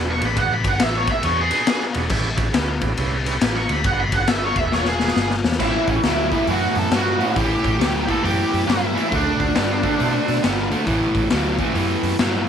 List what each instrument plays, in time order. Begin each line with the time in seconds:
Already playing: fingered electric bass E1, tonewheel organ D4 F#4 G#4 B4
0.11 lead electric guitar C#6
0.18 fingered electric bass A1, tonewheel organ D4 F#4 G#4 B4, ride
0.26 lead electric guitar B5
0.33 tonewheel organ D4 F#4 G#4 B4, ride
0.37 lead electric guitar F#5, kick
0.54 lead electric guitar B5
0.64 fingered electric bass G1, tonewheel organ D4 F#4 G#4 B4, lead electric guitar F#5, kick, ride
0.79 fingered electric bass A1, tonewheel organ D4 F#4 G#4 B4, lead electric guitar E5, snare, ride
0.97 lead electric guitar C#5
1.07 tonewheel organ D4 F#4 G#4 B4, lead electric guitar E5, muted fingered electric bass stroke, kick, ride
1.23 fingered electric bass E2, tonewheel organ D4 F#4 G#4 B4, lead electric guitar C#5, ride
1.41 lead electric guitar G#4
1.50 tonewheel organ D4 F#4 G#4 B4, ride
1.67 tonewheel organ D4 F#4 G#4 B4, snare, ride
1.80 snare
1.94 fingered electric bass E1, tonewheel organ D4 F#4 G#4 B4, ride
2.09 fingered electric bass A1, tonewheel organ C#4 E4 G4 B4, kick, crash
2.36 tonewheel organ C#4 E4 G4 B4, kick, ride
2.52 fingered electric bass D2, tonewheel organ C#4 E4 G4 B4, snare, ride
2.81 fingered electric bass A1, tonewheel organ C#4 E4 G4 B4, kick, ride
2.97 fingered electric bass C2, tonewheel organ C#4 E4 G4 B4, ride
3.25 tonewheel organ C#4 E4 G4 B4, ride
3.41 fingered electric bass A1, tonewheel organ C#4 E4 G4 B4, snare, ride
3.56 lead electric guitar C#6, snare
3.68 fingered electric bass D2, tonewheel organ C#4 E4, lead electric guitar B5, ride
3.73 tonewheel organ G4 B4
3.84 fingered electric bass G1, tonewheel organ D4 F#4 G#4 B4, lead electric guitar F#5, kick, ride
4.00 lead electric guitar B5
4.12 tonewheel organ D4 F#4 G#4 B4, lead electric guitar F#5, kick, ride
4.27 lead electric guitar E5, snare, ride
4.32 tonewheel organ D4 F#4 G#4 B4
4.45 lead electric guitar C#5
4.56 fingered electric bass E1, tonewheel organ D4 F#4 B4, lead electric guitar E5, kick, ride
4.60 tonewheel organ G#4
4.72 tonewheel organ D4 F#4 B4, lead electric guitar C#5, snare
4.76 tonewheel organ G#4
4.85 lead electric guitar G#4, snare
5.00 tonewheel organ D4 F#4 G#4 B4, snare
5.08 snare
5.15 fingered electric bass G1, tonewheel organ D4 F#4 G#4 B4, snare
5.30 snare
5.44 fingered electric bass E2, tonewheel organ D4 F#4 G#4 B4, snare
5.52 snare
5.59 fingered electric bass A1, overdriven electric guitar A2 E3, tonewheel organ C#4 E4 G4 B4, lead electric guitar E4, kick, crash
5.85 fingered electric bass A1, tonewheel organ C#4 E4 G4 B4, lead electric guitar C#4, kick, open hi-hat
6.03 fingered electric bass D2, overdriven electric guitar A2 F#3, tonewheel organ C#4 E4 G4 B4, lead electric guitar E4, snare, open hi-hat
6.32 overdriven electric guitar A2 E3, tonewheel organ C#4 E4 G4 B4, lead electric guitar E4, kick, open hi-hat
6.47 fingered electric bass F#2, overdriven electric guitar A2 E3, tonewheel organ C#4 E4 G4 B4, lead electric guitar F#4, open hi-hat
6.75 fingered electric bass F#2, tonewheel organ C#4 E4 G4 B4, lead electric guitar A4, open hi-hat
6.89 fingered electric bass G2, overdriven electric guitar A2 F#3, tonewheel organ C#4 E4 G4 B4, snare, open hi-hat
6.96 lead electric guitar F#4
7.06 snare
7.18 overdriven electric guitar A2 E3, tonewheel organ C#4 E4 G4 B4, open hi-hat
7.32 overdriven electric guitar A2, tonewheel organ C#4, lead electric guitar F#4
7.36 fingered electric bass A1, overdriven electric guitar E3, tonewheel organ E4 G4 B4, lead electric guitar G4, kick, open hi-hat
7.63 fingered electric bass A1, tonewheel organ C#4 E4 G4 B4, kick, open hi-hat
7.79 fingered electric bass D2, overdriven electric guitar A2 F#3, tonewheel organ C#4 E4 G4 B4, snare, open hi-hat
8.07 overdriven electric guitar A2 E3, tonewheel organ C#4 E4 G4 B4, lead electric guitar A4, kick, open hi-hat
8.23 fingered electric bass F#2, overdriven electric guitar A2 E3, tonewheel organ C#4 E4 G4 A4, lead electric guitar G4, open hi-hat
8.50 fingered electric bass F#2, tonewheel organ C#4 E4 G4 B4, open hi-hat
8.67 fingered electric bass G2, overdriven electric guitar A2 F#3, tonewheel organ C#4 E4 G4 B4, lead electric guitar E4, snare, open hi-hat
8.94 overdriven electric guitar A2 E3, tonewheel organ C#4 E4 G4 B4, open hi-hat
9.11 fingered electric bass D2, overdriven electric guitar D3 A3, tonewheel organ C4 E4 F#4 A4, lead electric guitar D4, kick, open hi-hat
9.39 fingered electric bass D2, tonewheel organ C4 E4 F#4 A4, kick, open hi-hat
9.55 fingered electric bass G2, overdriven electric guitar D3 B3, tonewheel organ C4 E4 F#4 A4, snare, open hi-hat
9.82 overdriven electric guitar D3 A3, tonewheel organ C4 E4 F#4 A4, kick, open hi-hat
9.97 fingered electric bass B2, overdriven electric guitar D3 A3, tonewheel organ C4 E4 F#4 A4, open hi-hat
10.25 fingered electric bass B2, tonewheel organ C4 E4 F#4 A4, open hi-hat
10.42 fingered electric bass G1, overdriven electric guitar D3 B3, tonewheel organ C4 E4 F#4 A4, snare, open hi-hat
10.58 snare
10.71 overdriven electric guitar D3 A3, tonewheel organ C4 E4 F#4 A4, open hi-hat
10.86 fingered electric bass A1, overdriven electric guitar A2 E3, tonewheel organ B3 E4, kick, open hi-hat
10.90 tonewheel organ C#4 G4
11.15 fingered electric bass A1, tonewheel organ B3 C#4 E4, kick, open hi-hat
11.19 tonewheel organ G4
11.30 fingered electric bass D2, overdriven electric guitar A2 F#3, tonewheel organ B3, snare, open hi-hat
11.35 tonewheel organ C#4 E4 G4
11.58 overdriven electric guitar A2 E3, kick, open hi-hat
11.66 tonewheel organ B3 C#4 E4 G4
11.73 fingered electric bass F#2, overdriven electric guitar A2 E3, open hi-hat
11.78 tonewheel organ B3 C#4 E4 G4
12.03 fingered electric bass F#2, tonewheel organ B3 C#4 E4 G4, open hi-hat
12.19 fingered electric bass G2, overdriven electric guitar A2 F#3, tonewheel organ B3 C#4 E4 G4, snare, open hi-hat
12.33 snare
12.45 tonewheel organ B3 C#4 E4